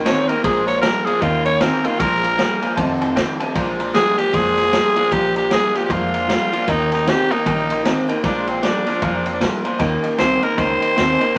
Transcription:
Already playing: A#1
0.05 D#3 A#3 C4 C#4 G4 C#5 D#5 G5 A#5, snare, ride
0.28 D#3 A#3 C#4 G4 A#4 D#5 G5 A#5, muted upright bass stroke, ride
0.32 A#3
0.43 A#1 A#2 F3 G#3 D4 F4 G#4 D5 F5 A#5, kick, ride
0.66 G#3 D4 F4 C#5 D5 F5 A#5, snare, ride
0.81 A#2 F3 G3 G#3 A#4 D5 F5 A#5, snare, ride
0.86 D4 F4
1.05 A#2 F3 D4 F4 G#4 D5 F5 A#5, muted upright bass stroke, ride
1.10 G#3
1.21 D#2 D#3 A#3 C#4 F4 G4 D#5 G5 A#5, kick, ride
1.44 A#3 C#4 G4 C#5 D#5 G5 A#5, ride
1.60 D#3 A#3 C4 C#4 A#4 D#5 G5 A#5, snare, ride
1.84 D#3 A#3 C#4 F4 G4 D#5 G5 A#5, muted upright bass stroke, ride
1.98 A#1 A#2 F3 G#3 D4 F4 A#4 D5 F5 A#5, kick, ride
2.23 G#3 D4 F4 D5 F5 A#5, ride
2.37 A#2 F3 G3 G#3 D4 F4 D5 F5 G#5, snare, ride
2.61 A#2 F3 G#3 D4 F4 D5 F5 G#5, muted upright bass stroke, ride
2.76 F1 F2 C3 D#3 A3 D#4 C5 F5 A5, kick, ride
2.80 F4
3.01 A3 D#4 F4 C5 F5 A5, ride
3.05 D#3
3.15 F2 D3 D#3 A3 C5 F5 G5, kick, snare, ride
3.20 F4
3.40 F2 C3 D#3 A3 D#4 F4 C5 F5 A5, muted upright bass stroke, ride
3.55 A#1 A#2 F3 G#3 D4 F4 D5 F5 A#5, kick, ride
3.79 G#3 D4 F4 D5 F5 A#5, ride
3.94 A#2 F3 G3 G#3 D4 F4 G#4 D5 F5 G5, snare, ride
4.18 A#2 F3 G#3 D4 F4 G4 D5 F5 G#5, muted upright bass stroke, ride
4.33 F1 A#2 F3 G#3 D4 F4 G#4 D5 F5 C6, kick, ride
4.56 G#3 D4 F4 D5 F5 A#5, snare, ride
4.71 A#2 F3 G3 G#3 D5 F5 A#5, snare, ride
4.96 A#2 F3 G#3 D4 F4 D5 F5 A#5, muted upright bass stroke, ride
5.11 A#1 A#2 F3 G#3 D4 F4 G4 D5 F5 A#5, kick, ride
5.35 G#3 D4 F4 G4 D5 F5 A#5, ride
5.50 A#2 F3 G3 G#3 D4 F4 G#4 D5 F5 A#5, snare, ride
5.73 A#2 F3 G#3 D4 F4 G4 D5 F5 G5, muted upright bass stroke, snare, ride
5.85 A#2 F3 G4
5.89 F1 A#2 F3 G#3 D4 F4 D5 F5 A#5, kick, ride
6.13 G#3 D4 D5 F5 A#5, ride
6.28 A#2 F3 G3 G#3 D4 F4 D5 F5 A#5, snare, ride
6.51 A#2 F3 G#3 D4 F4 D5 F5 C6, muted upright bass stroke, ride
6.67 D#2 D#3 A#3 C#4 D#4 G4 D#5 G5 A#5, kick, ride
6.91 A#3 C#4 D#4 G4 D#5 G5 A#5, snare, ride
7.05 D#3 A#3 C4 D#5 G5 A#5, snare, ride
7.09 G4
7.30 D#3 A#3 C#4 D#4 G4 D#5 G5 A#5, muted upright bass stroke, ride
7.45 A#1 D#3 A#3 C#4 G4 D#5 G5 A#5, kick, ride
7.69 A#3 C#4 G4 D#5 G5 C6, ride
7.84 D#3 A#3 C4 C#4 G4 D#5 G5 A#5, snare, ride
8.08 D#3 A#3 C#4 G4 D#5 G5 A#5, muted upright bass stroke, ride
8.23 A#1 A#2 F3 G#3 D4 F4 D5 F5 A#5, kick, snare, ride
8.47 C4 F4 D5 F5 A#5, ride
8.62 A#2 F3 G3 G#3 D4 F4 D5 F5 A#5, snare, ride
8.86 A#2 F3 G#3 D4 F4 D5 F5 A#5, muted upright bass stroke, snare, ride
9.02 F1 A#2 F3 G#3 D4 F4 D5 F5 A#5, kick, ride
9.16 D4
9.25 G#3 C4 D4 F4 D5 F5 A#5, ride
9.34 D4
9.40 A#2 F3 G3 G#3 D4 F4 D5 F5 A#5, kick, snare, ride
9.64 A#2 F3 G#3 D4 F4 D5 F5 A#5, muted upright bass stroke, ride
9.78 D#2 D#3 A#3 C#4 D#5 G5 A#5, kick, snare, ride
9.83 G4
10.03 C#4 G4 D#5 G5 C#6, muted upright bass stroke, ride
10.07 A#3
10.17 C2 D#3 A#3 C4 C#4 C5 D#5 G5 A#5, snare, ride
10.21 G4
10.42 D#3 A#3 C#4 G4 A#4 D#5 G5 A#5, muted upright bass stroke, ride
10.46 A#3
10.57 C#2 D#3 A#3 C#4 G4 C5 D#5 G5 A#5, kick, ride
10.81 C#4 G4 D#5 G5 C6, muted upright bass stroke, ride
10.86 A#3
10.96 D#2 D#3 A#3 C4 C#4 G4 D#5 G5 C6, snare, ride
11.19 D#3 A#3 C#4 G4 D#5 G5 C6, muted upright bass stroke, ride
11.35 E3 E5

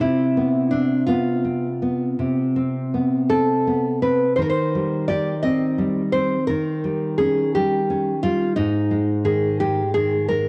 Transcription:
0.00 C3 E4
0.37 B3
0.71 C4 D4
1.07 B3 F4
1.44 C4
1.82 B3
2.19 C3
2.56 C4
2.94 B3
3.30 C4 A4
3.67 B3
4.02 C4 B4
4.36 D#3 C5
4.42 A#4
4.50 C5
4.75 G3
5.08 G4 D5
5.43 C4 D#5
5.78 G3
6.12 C4 C5
6.47 D#3 A#4
6.84 G3
7.18 C#4 G#4
7.55 G3 G4
7.90 C#4
8.23 G3 F4
8.56 G#2 D#4
8.91 G#3
9.25 D#3 G#4
9.60 G#3 G4
9.94 D#3 G#4
10.29 G#3 A#4

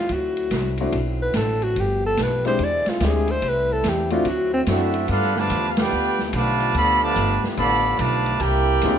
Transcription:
Already playing: E4 F4
0.09 D2 D3 F#3 C4, kick, ride
0.13 F#4
0.37 ride
0.51 C2, kick, snare, hi-hat pedal, ride
0.77 A3 C4 D4 E4 F#4, ride
0.92 B1, kick, ride
1.22 B4
1.33 A1 A4, kick, snare, hi-hat pedal, ride
1.62 F#4, ride
1.76 G1 F3 A3 B3 G4, kick, ride
2.06 A4
2.17 B1, kick, snare, hi-hat pedal, ride
2.23 B4
2.45 G#3 C4 D4 E4 G4 C5, snare, ride
2.59 E2 D3 G#3 C4 E4, kick, ride
2.64 D5
2.86 F4, muted upright bass stroke, snare, ride
3.00 D2 G#3 C4 D4 E4 G4, kick, snare, hi-hat pedal, ride
3.06 G#4
3.27 C5, ride
3.42 C2 C3 G3 A3, kick, ride
3.48 B4
3.72 A4
3.83 E2, kick, snare, hi-hat pedal, ride
3.89 G4
4.10 A3 C4 D4 E4 F4 F#4, ride
4.25 D2 D3 F#3 C4 F#4, kick, ride
4.54 C4
4.66 F#2 A3 C4 D4 E4 F#4 A4 E5, kick, snare, hi-hat pedal, ride
4.94 ride
5.08 G2 A3 B3 D4 F4 G4 A4 B4 F5, kick, ride
5.22 snare
5.36 D3 F3 A3 F4 B4 D5 A5, snare
5.50 E2, kick, hi-hat pedal, ride
5.69 F5
5.77 B3 D4 F4 G4 B4 D5 G5, snare, ride
5.92 D2
6.19 snare
6.33 B1 D3 F3 A3 F4 B4 D5 A5, kick, hi-hat pedal, ride
6.60 ride
6.74 D2 D3 F3 B3 A4 D5 F5 B5, kick, ride
7.01 D3 F3 A3 F4 B4 D5 A5
7.16 G1, kick, hi-hat pedal, ride
7.44 muted upright bass stroke, snare
7.56 A1 D3 F3 B3 A4 D5 F5 B5, kick, ride
7.99 B1 D3 F3 A3 F4 B4 D5 A5, kick, hi-hat pedal, ride
8.26 ride
8.40 C2 D3 A#3 C4 E4 G4 A#4 D5 G5, kick, ride
8.81 D2 B3 C#4 D#4 F4 G#4, kick, snare, hi-hat pedal, ride

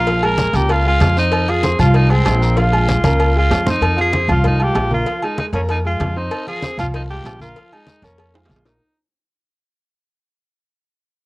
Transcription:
Already playing: A#1 F4
0.07 F3 F4 F5, cowbell, high conga, low agogo, long guiro
0.22 G#3 G#4 A#4 G#5, high conga, low agogo
0.38 cowbell, high conga, low timbale, short guiro
0.53 C#2 A#3 G4 A#4 A#5, cowbell, high conga, low agogo, short guiro
0.69 F4, cowbell, high conga, low agogo, long guiro
0.85 G#3 F4 G#4 G#5, high conga
1.00 F2, cowbell, high conga, low timbale, low agogo, short guiro
1.16 C4 D#4 C5 C6, short guiro
1.32 cowbell, high conga, low agogo, long guiro
1.47 F3 F4 G#4 F5, high conga, low agogo
1.63 C4 C5 C6, cowbell, high conga, low timbale, short guiro
1.79 C2 F3 F4 F5, high conga, low conga, low agogo, short guiro
1.94 D#4, cowbell, high conga, low agogo, long guiro
2.10 G#3 C4 G#4 G#5, high conga, low agogo
2.26 A#1, cowbell, high conga, low timbale, low agogo, short guiro
2.41 A#3 A#4 A#5, short guiro
2.57 F3 F4 F5, cowbell, high conga, low agogo, long guiro
2.72 G#3 G#4 G#5, high conga, low agogo
2.88 cowbell, high conga, low timbale, short guiro
3.04 C#2 A#3 A#4 A#5, cowbell, high conga, low agogo, short guiro
3.20 cowbell, low agogo, long guiro
3.36 G#3 F4 G#4 G#5
3.50 F2, cowbell, low timbale, low agogo, short guiro
3.66 C4 D#4 C5 C6, low conga, short guiro
3.81 F2, cowbell, high conga, low agogo
3.96 F3 F4 G#4 F5, high conga, low agogo
4.12 C4 C5 C6, cowbell, high conga, low timbale
4.28 C2 F3 F4 F5, high conga, low conga, low agogo
4.44 D#4, cowbell, high conga, low conga, low agogo
4.60 G#3 F4 G4 F5, high conga, low agogo
4.75 A#1, cowbell, high conga, low timbale, low agogo
4.90 A#3 F4 A#4 A#5, high conga
5.06 F3 F4 F5, cowbell, high conga, low agogo
5.22 G#3 D#4 G#4 G#5, high conga, low agogo
5.38 D#4, cowbell, high conga, low timbale
5.53 F2 A#3 C#4 A#4 A#5, cowbell, high conga, low agogo
5.69 D#4, cowbell, high conga, low agogo
5.85 G#3 F4 G#4 G#5, high conga
6.00 F2, cowbell, high conga, low timbale, low agogo
6.16 C4 D#4 C5 C6, high conga
6.31 cowbell, high conga, low agogo, long guiro
6.47 F3 F4 G#4 F5, high conga, low agogo
6.62 C4 C5 C6, cowbell, high conga, low timbale, short guiro
6.78 C2 F3 F4 F5, high conga, low conga, low agogo, short guiro
6.94 D#4, cowbell, low agogo, long guiro
7.10 G#3 F4 G4 F5, high conga, low agogo
7.24 A#1, cowbell, high conga, low timbale, low agogo, short guiro
7.40 A#3 F4 A#4 A#5, high conga, short guiro
7.56 F3 F4 F5, cowbell, high conga, low agogo, long guiro
7.72 G#3 D#4 G#4 G#5, high conga, low agogo
7.87 cowbell, high conga, low timbale, short guiro
8.02 F2 A#3 C#4 A#4 A#5, cowbell, high conga, low agogo, short guiro
8.18 cowbell, high bongo, high conga, low agogo, long guiro
8.34 G#3 F4 G#4 G#5, high bongo, high conga, high timbale
8.46 A#1, high conga, low timbale
8.50 cowbell, low agogo, short guiro
8.56 low timbale
8.65 A#3 D#4 A#4 A#5, low bongo, low timbale, short guiro

